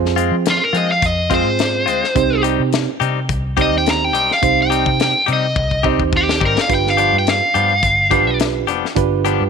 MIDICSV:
0, 0, Header, 1, 6, 480
1, 0, Start_track
1, 0, Key_signature, -3, "minor"
1, 0, Tempo, 567108
1, 1828, Time_signature, 4, 2, 24, 8
1, 8037, End_track
2, 0, Start_track
2, 0, Title_t, "Overdriven electric guitar"
2, 0, Program_c, 0, 29
2, 424, Note_on_c, 0, 65, 76
2, 531, Note_off_c, 0, 65, 0
2, 538, Note_on_c, 0, 70, 69
2, 636, Note_off_c, 0, 70, 0
2, 651, Note_on_c, 0, 75, 82
2, 765, Note_off_c, 0, 75, 0
2, 775, Note_on_c, 0, 77, 76
2, 894, Note_off_c, 0, 77, 0
2, 894, Note_on_c, 0, 75, 74
2, 1114, Note_off_c, 0, 75, 0
2, 1131, Note_on_c, 0, 72, 97
2, 2051, Note_off_c, 0, 72, 0
2, 3059, Note_on_c, 0, 75, 76
2, 3168, Note_off_c, 0, 75, 0
2, 3197, Note_on_c, 0, 79, 80
2, 3286, Note_off_c, 0, 79, 0
2, 3305, Note_on_c, 0, 82, 87
2, 3424, Note_off_c, 0, 82, 0
2, 3424, Note_on_c, 0, 79, 75
2, 3643, Note_off_c, 0, 79, 0
2, 3667, Note_on_c, 0, 77, 78
2, 3885, Note_off_c, 0, 77, 0
2, 3911, Note_on_c, 0, 79, 80
2, 4468, Note_off_c, 0, 79, 0
2, 4509, Note_on_c, 0, 75, 94
2, 4954, Note_off_c, 0, 75, 0
2, 5218, Note_on_c, 0, 67, 92
2, 5436, Note_off_c, 0, 67, 0
2, 5464, Note_on_c, 0, 70, 86
2, 5570, Note_off_c, 0, 70, 0
2, 5596, Note_on_c, 0, 77, 70
2, 5684, Note_off_c, 0, 77, 0
2, 5707, Note_on_c, 0, 79, 91
2, 5812, Note_off_c, 0, 79, 0
2, 5841, Note_on_c, 0, 77, 86
2, 6052, Note_off_c, 0, 77, 0
2, 6081, Note_on_c, 0, 79, 75
2, 6167, Note_off_c, 0, 79, 0
2, 6182, Note_on_c, 0, 77, 94
2, 7095, Note_off_c, 0, 77, 0
2, 8037, End_track
3, 0, Start_track
3, 0, Title_t, "Reed electric piano"
3, 0, Program_c, 1, 4
3, 0, Note_on_c, 1, 60, 81
3, 0, Note_on_c, 1, 65, 86
3, 0, Note_on_c, 1, 68, 77
3, 0, Note_on_c, 1, 72, 95
3, 520, Note_off_c, 1, 60, 0
3, 523, Note_off_c, 1, 65, 0
3, 525, Note_off_c, 1, 68, 0
3, 527, Note_off_c, 1, 72, 0
3, 1101, Note_on_c, 1, 60, 75
3, 1106, Note_on_c, 1, 65, 64
3, 1111, Note_on_c, 1, 68, 62
3, 1116, Note_on_c, 1, 72, 70
3, 1561, Note_off_c, 1, 60, 0
3, 1564, Note_off_c, 1, 65, 0
3, 1566, Note_off_c, 1, 68, 0
3, 1569, Note_off_c, 1, 72, 0
3, 1820, Note_on_c, 1, 60, 98
3, 1826, Note_on_c, 1, 63, 80
3, 1829, Note_on_c, 1, 67, 85
3, 1834, Note_on_c, 1, 72, 95
3, 2439, Note_off_c, 1, 60, 0
3, 2442, Note_off_c, 1, 63, 0
3, 2443, Note_off_c, 1, 67, 0
3, 2446, Note_off_c, 1, 72, 0
3, 3018, Note_on_c, 1, 60, 67
3, 3023, Note_on_c, 1, 63, 60
3, 3029, Note_on_c, 1, 67, 65
3, 3033, Note_on_c, 1, 72, 71
3, 3480, Note_off_c, 1, 60, 0
3, 3482, Note_off_c, 1, 63, 0
3, 3485, Note_off_c, 1, 67, 0
3, 3487, Note_off_c, 1, 72, 0
3, 3739, Note_on_c, 1, 60, 70
3, 3746, Note_on_c, 1, 63, 67
3, 3749, Note_on_c, 1, 67, 64
3, 3753, Note_on_c, 1, 72, 86
3, 4358, Note_off_c, 1, 60, 0
3, 4361, Note_off_c, 1, 63, 0
3, 4363, Note_off_c, 1, 67, 0
3, 4365, Note_off_c, 1, 72, 0
3, 4938, Note_on_c, 1, 60, 66
3, 4946, Note_on_c, 1, 63, 60
3, 4948, Note_on_c, 1, 67, 55
3, 4955, Note_on_c, 1, 72, 75
3, 5399, Note_off_c, 1, 60, 0
3, 5403, Note_off_c, 1, 63, 0
3, 5404, Note_off_c, 1, 67, 0
3, 5408, Note_off_c, 1, 72, 0
3, 5658, Note_on_c, 1, 62, 70
3, 5665, Note_on_c, 1, 65, 65
3, 5670, Note_on_c, 1, 67, 64
3, 5675, Note_on_c, 1, 71, 78
3, 6277, Note_off_c, 1, 62, 0
3, 6281, Note_off_c, 1, 65, 0
3, 6283, Note_off_c, 1, 67, 0
3, 6285, Note_off_c, 1, 71, 0
3, 6859, Note_on_c, 1, 62, 76
3, 6863, Note_on_c, 1, 65, 69
3, 6870, Note_on_c, 1, 67, 72
3, 6875, Note_on_c, 1, 71, 89
3, 7319, Note_off_c, 1, 62, 0
3, 7321, Note_off_c, 1, 65, 0
3, 7325, Note_off_c, 1, 67, 0
3, 7327, Note_off_c, 1, 71, 0
3, 7579, Note_on_c, 1, 62, 95
3, 7581, Note_on_c, 1, 65, 82
3, 7587, Note_on_c, 1, 67, 80
3, 7592, Note_on_c, 1, 71, 106
3, 8037, Note_off_c, 1, 62, 0
3, 8037, Note_off_c, 1, 65, 0
3, 8037, Note_off_c, 1, 67, 0
3, 8037, Note_off_c, 1, 71, 0
3, 8037, End_track
4, 0, Start_track
4, 0, Title_t, "Clean electric guitar"
4, 0, Program_c, 2, 27
4, 138, Note_on_c, 2, 65, 84
4, 146, Note_on_c, 2, 60, 65
4, 158, Note_on_c, 2, 56, 57
4, 293, Note_off_c, 2, 65, 0
4, 298, Note_off_c, 2, 60, 0
4, 303, Note_off_c, 2, 56, 0
4, 617, Note_on_c, 2, 65, 74
4, 628, Note_on_c, 2, 60, 68
4, 638, Note_on_c, 2, 56, 57
4, 773, Note_off_c, 2, 65, 0
4, 779, Note_off_c, 2, 60, 0
4, 784, Note_off_c, 2, 56, 0
4, 1099, Note_on_c, 2, 65, 77
4, 1109, Note_on_c, 2, 60, 72
4, 1119, Note_on_c, 2, 56, 65
4, 1254, Note_off_c, 2, 65, 0
4, 1259, Note_off_c, 2, 60, 0
4, 1264, Note_off_c, 2, 56, 0
4, 1573, Note_on_c, 2, 65, 62
4, 1584, Note_on_c, 2, 60, 59
4, 1595, Note_on_c, 2, 56, 63
4, 1731, Note_off_c, 2, 65, 0
4, 1737, Note_off_c, 2, 60, 0
4, 1742, Note_off_c, 2, 56, 0
4, 2056, Note_on_c, 2, 67, 82
4, 2064, Note_on_c, 2, 63, 67
4, 2070, Note_on_c, 2, 60, 68
4, 2077, Note_on_c, 2, 55, 65
4, 2213, Note_off_c, 2, 67, 0
4, 2217, Note_off_c, 2, 63, 0
4, 2220, Note_off_c, 2, 60, 0
4, 2223, Note_off_c, 2, 55, 0
4, 2539, Note_on_c, 2, 67, 75
4, 2547, Note_on_c, 2, 63, 68
4, 2554, Note_on_c, 2, 60, 64
4, 2561, Note_on_c, 2, 55, 67
4, 2694, Note_off_c, 2, 67, 0
4, 2698, Note_off_c, 2, 63, 0
4, 2702, Note_off_c, 2, 60, 0
4, 2705, Note_off_c, 2, 55, 0
4, 3020, Note_on_c, 2, 67, 83
4, 3029, Note_on_c, 2, 63, 59
4, 3033, Note_on_c, 2, 60, 54
4, 3041, Note_on_c, 2, 55, 63
4, 3175, Note_off_c, 2, 67, 0
4, 3179, Note_off_c, 2, 63, 0
4, 3181, Note_off_c, 2, 60, 0
4, 3185, Note_off_c, 2, 55, 0
4, 3498, Note_on_c, 2, 67, 58
4, 3506, Note_on_c, 2, 63, 64
4, 3514, Note_on_c, 2, 60, 55
4, 3520, Note_on_c, 2, 55, 49
4, 3654, Note_off_c, 2, 67, 0
4, 3657, Note_off_c, 2, 63, 0
4, 3662, Note_off_c, 2, 60, 0
4, 3664, Note_off_c, 2, 55, 0
4, 3978, Note_on_c, 2, 67, 64
4, 3985, Note_on_c, 2, 63, 64
4, 3994, Note_on_c, 2, 60, 63
4, 4000, Note_on_c, 2, 55, 60
4, 4134, Note_off_c, 2, 67, 0
4, 4137, Note_off_c, 2, 63, 0
4, 4141, Note_off_c, 2, 60, 0
4, 4144, Note_off_c, 2, 55, 0
4, 4455, Note_on_c, 2, 67, 66
4, 4465, Note_on_c, 2, 63, 63
4, 4472, Note_on_c, 2, 60, 60
4, 4478, Note_on_c, 2, 55, 54
4, 4612, Note_off_c, 2, 67, 0
4, 4617, Note_off_c, 2, 63, 0
4, 4620, Note_off_c, 2, 60, 0
4, 4623, Note_off_c, 2, 55, 0
4, 4937, Note_on_c, 2, 67, 68
4, 4943, Note_on_c, 2, 63, 71
4, 4953, Note_on_c, 2, 60, 73
4, 4956, Note_on_c, 2, 55, 55
4, 5093, Note_off_c, 2, 67, 0
4, 5096, Note_off_c, 2, 63, 0
4, 5101, Note_off_c, 2, 60, 0
4, 5102, Note_off_c, 2, 55, 0
4, 5421, Note_on_c, 2, 67, 56
4, 5427, Note_on_c, 2, 63, 58
4, 5434, Note_on_c, 2, 60, 58
4, 5441, Note_on_c, 2, 55, 44
4, 5575, Note_off_c, 2, 67, 0
4, 5578, Note_off_c, 2, 63, 0
4, 5581, Note_off_c, 2, 60, 0
4, 5585, Note_off_c, 2, 55, 0
4, 5901, Note_on_c, 2, 67, 62
4, 5911, Note_on_c, 2, 62, 65
4, 5917, Note_on_c, 2, 59, 60
4, 5922, Note_on_c, 2, 53, 51
4, 6054, Note_off_c, 2, 67, 0
4, 6059, Note_off_c, 2, 62, 0
4, 6062, Note_off_c, 2, 59, 0
4, 6065, Note_off_c, 2, 53, 0
4, 6384, Note_on_c, 2, 67, 67
4, 6391, Note_on_c, 2, 62, 72
4, 6401, Note_on_c, 2, 59, 71
4, 6406, Note_on_c, 2, 53, 58
4, 6536, Note_off_c, 2, 67, 0
4, 6539, Note_off_c, 2, 62, 0
4, 6544, Note_off_c, 2, 59, 0
4, 6547, Note_off_c, 2, 53, 0
4, 6862, Note_on_c, 2, 67, 74
4, 6869, Note_on_c, 2, 62, 85
4, 6877, Note_on_c, 2, 59, 64
4, 6883, Note_on_c, 2, 53, 59
4, 7015, Note_off_c, 2, 67, 0
4, 7018, Note_off_c, 2, 62, 0
4, 7022, Note_off_c, 2, 59, 0
4, 7025, Note_off_c, 2, 53, 0
4, 7341, Note_on_c, 2, 67, 69
4, 7348, Note_on_c, 2, 62, 62
4, 7357, Note_on_c, 2, 59, 59
4, 7364, Note_on_c, 2, 53, 62
4, 7494, Note_off_c, 2, 67, 0
4, 7497, Note_off_c, 2, 62, 0
4, 7502, Note_off_c, 2, 59, 0
4, 7505, Note_off_c, 2, 53, 0
4, 7826, Note_on_c, 2, 67, 72
4, 7834, Note_on_c, 2, 62, 76
4, 7840, Note_on_c, 2, 59, 73
4, 7845, Note_on_c, 2, 53, 71
4, 7976, Note_off_c, 2, 67, 0
4, 7980, Note_off_c, 2, 62, 0
4, 7983, Note_off_c, 2, 59, 0
4, 7986, Note_off_c, 2, 53, 0
4, 8037, End_track
5, 0, Start_track
5, 0, Title_t, "Fingered electric bass"
5, 0, Program_c, 3, 33
5, 0, Note_on_c, 3, 41, 99
5, 256, Note_off_c, 3, 41, 0
5, 265, Note_on_c, 3, 53, 94
5, 498, Note_off_c, 3, 53, 0
5, 617, Note_on_c, 3, 53, 89
5, 850, Note_off_c, 3, 53, 0
5, 867, Note_on_c, 3, 41, 81
5, 1229, Note_off_c, 3, 41, 0
5, 1229, Note_on_c, 3, 44, 80
5, 1581, Note_off_c, 3, 44, 0
5, 1581, Note_on_c, 3, 38, 95
5, 1706, Note_off_c, 3, 38, 0
5, 1826, Note_on_c, 3, 36, 95
5, 2176, Note_off_c, 3, 36, 0
5, 2193, Note_on_c, 3, 48, 94
5, 2422, Note_off_c, 3, 48, 0
5, 2545, Note_on_c, 3, 48, 98
5, 2773, Note_off_c, 3, 48, 0
5, 2783, Note_on_c, 3, 36, 86
5, 3153, Note_off_c, 3, 36, 0
5, 3153, Note_on_c, 3, 39, 86
5, 3507, Note_off_c, 3, 39, 0
5, 3507, Note_on_c, 3, 35, 98
5, 3629, Note_off_c, 3, 35, 0
5, 3749, Note_on_c, 3, 36, 82
5, 4097, Note_off_c, 3, 36, 0
5, 4113, Note_on_c, 3, 48, 78
5, 4342, Note_off_c, 3, 48, 0
5, 4470, Note_on_c, 3, 48, 88
5, 4696, Note_off_c, 3, 48, 0
5, 4707, Note_on_c, 3, 36, 88
5, 5074, Note_off_c, 3, 36, 0
5, 5074, Note_on_c, 3, 39, 78
5, 5426, Note_on_c, 3, 32, 93
5, 5439, Note_off_c, 3, 39, 0
5, 5548, Note_off_c, 3, 32, 0
5, 5664, Note_on_c, 3, 31, 89
5, 6014, Note_off_c, 3, 31, 0
5, 6036, Note_on_c, 3, 43, 85
5, 6262, Note_off_c, 3, 43, 0
5, 6390, Note_on_c, 3, 43, 86
5, 6615, Note_off_c, 3, 43, 0
5, 6625, Note_on_c, 3, 31, 86
5, 6995, Note_off_c, 3, 31, 0
5, 6995, Note_on_c, 3, 35, 85
5, 7349, Note_off_c, 3, 35, 0
5, 7349, Note_on_c, 3, 29, 96
5, 7469, Note_off_c, 3, 29, 0
5, 7587, Note_on_c, 3, 31, 92
5, 7935, Note_off_c, 3, 31, 0
5, 7958, Note_on_c, 3, 43, 82
5, 8037, Note_off_c, 3, 43, 0
5, 8037, End_track
6, 0, Start_track
6, 0, Title_t, "Drums"
6, 46, Note_on_c, 9, 38, 35
6, 131, Note_off_c, 9, 38, 0
6, 146, Note_on_c, 9, 42, 67
6, 231, Note_off_c, 9, 42, 0
6, 384, Note_on_c, 9, 42, 94
6, 396, Note_on_c, 9, 38, 114
6, 468, Note_off_c, 9, 42, 0
6, 481, Note_off_c, 9, 38, 0
6, 630, Note_on_c, 9, 42, 52
6, 714, Note_off_c, 9, 42, 0
6, 867, Note_on_c, 9, 36, 105
6, 867, Note_on_c, 9, 42, 79
6, 951, Note_off_c, 9, 36, 0
6, 951, Note_off_c, 9, 42, 0
6, 1105, Note_on_c, 9, 42, 62
6, 1106, Note_on_c, 9, 36, 81
6, 1189, Note_off_c, 9, 42, 0
6, 1191, Note_off_c, 9, 36, 0
6, 1342, Note_on_c, 9, 42, 69
6, 1355, Note_on_c, 9, 38, 96
6, 1427, Note_off_c, 9, 42, 0
6, 1440, Note_off_c, 9, 38, 0
6, 1585, Note_on_c, 9, 42, 61
6, 1670, Note_off_c, 9, 42, 0
6, 1726, Note_on_c, 9, 38, 28
6, 1810, Note_off_c, 9, 38, 0
6, 1826, Note_on_c, 9, 36, 105
6, 1827, Note_on_c, 9, 42, 72
6, 1910, Note_off_c, 9, 36, 0
6, 1912, Note_off_c, 9, 42, 0
6, 2065, Note_on_c, 9, 42, 59
6, 2149, Note_off_c, 9, 42, 0
6, 2305, Note_on_c, 9, 42, 69
6, 2317, Note_on_c, 9, 38, 108
6, 2389, Note_off_c, 9, 42, 0
6, 2402, Note_off_c, 9, 38, 0
6, 2550, Note_on_c, 9, 42, 52
6, 2634, Note_off_c, 9, 42, 0
6, 2786, Note_on_c, 9, 36, 107
6, 2787, Note_on_c, 9, 42, 75
6, 2871, Note_off_c, 9, 36, 0
6, 2872, Note_off_c, 9, 42, 0
6, 3026, Note_on_c, 9, 36, 86
6, 3026, Note_on_c, 9, 42, 60
6, 3110, Note_off_c, 9, 42, 0
6, 3111, Note_off_c, 9, 36, 0
6, 3269, Note_on_c, 9, 42, 79
6, 3282, Note_on_c, 9, 38, 98
6, 3354, Note_off_c, 9, 42, 0
6, 3366, Note_off_c, 9, 38, 0
6, 3507, Note_on_c, 9, 42, 58
6, 3591, Note_off_c, 9, 42, 0
6, 3650, Note_on_c, 9, 38, 30
6, 3735, Note_off_c, 9, 38, 0
6, 3747, Note_on_c, 9, 36, 97
6, 3748, Note_on_c, 9, 42, 83
6, 3832, Note_off_c, 9, 36, 0
6, 3833, Note_off_c, 9, 42, 0
6, 3991, Note_on_c, 9, 42, 69
6, 4076, Note_off_c, 9, 42, 0
6, 4115, Note_on_c, 9, 36, 79
6, 4199, Note_off_c, 9, 36, 0
6, 4228, Note_on_c, 9, 42, 81
6, 4240, Note_on_c, 9, 38, 102
6, 4312, Note_off_c, 9, 42, 0
6, 4325, Note_off_c, 9, 38, 0
6, 4468, Note_on_c, 9, 42, 56
6, 4552, Note_off_c, 9, 42, 0
6, 4706, Note_on_c, 9, 36, 98
6, 4791, Note_off_c, 9, 36, 0
6, 4835, Note_on_c, 9, 36, 53
6, 4920, Note_off_c, 9, 36, 0
6, 4946, Note_on_c, 9, 36, 71
6, 5030, Note_off_c, 9, 36, 0
6, 5074, Note_on_c, 9, 36, 67
6, 5159, Note_off_c, 9, 36, 0
6, 5186, Note_on_c, 9, 36, 88
6, 5270, Note_off_c, 9, 36, 0
6, 5327, Note_on_c, 9, 38, 77
6, 5411, Note_off_c, 9, 38, 0
6, 5428, Note_on_c, 9, 36, 93
6, 5512, Note_off_c, 9, 36, 0
6, 5568, Note_on_c, 9, 38, 84
6, 5653, Note_off_c, 9, 38, 0
6, 5667, Note_on_c, 9, 36, 99
6, 5668, Note_on_c, 9, 42, 76
6, 5752, Note_off_c, 9, 36, 0
6, 5752, Note_off_c, 9, 42, 0
6, 5812, Note_on_c, 9, 38, 30
6, 5896, Note_off_c, 9, 38, 0
6, 5908, Note_on_c, 9, 42, 63
6, 5992, Note_off_c, 9, 42, 0
6, 6150, Note_on_c, 9, 42, 73
6, 6163, Note_on_c, 9, 38, 106
6, 6235, Note_off_c, 9, 42, 0
6, 6248, Note_off_c, 9, 38, 0
6, 6388, Note_on_c, 9, 42, 48
6, 6473, Note_off_c, 9, 42, 0
6, 6623, Note_on_c, 9, 42, 78
6, 6626, Note_on_c, 9, 36, 91
6, 6707, Note_off_c, 9, 42, 0
6, 6711, Note_off_c, 9, 36, 0
6, 6864, Note_on_c, 9, 42, 58
6, 6866, Note_on_c, 9, 36, 76
6, 6949, Note_off_c, 9, 42, 0
6, 6951, Note_off_c, 9, 36, 0
6, 7104, Note_on_c, 9, 42, 83
6, 7116, Note_on_c, 9, 38, 108
6, 7188, Note_off_c, 9, 42, 0
6, 7201, Note_off_c, 9, 38, 0
6, 7347, Note_on_c, 9, 42, 57
6, 7432, Note_off_c, 9, 42, 0
6, 7492, Note_on_c, 9, 38, 29
6, 7576, Note_off_c, 9, 38, 0
6, 7587, Note_on_c, 9, 36, 98
6, 7588, Note_on_c, 9, 42, 82
6, 7672, Note_off_c, 9, 36, 0
6, 7673, Note_off_c, 9, 42, 0
6, 7831, Note_on_c, 9, 42, 66
6, 7916, Note_off_c, 9, 42, 0
6, 8037, End_track
0, 0, End_of_file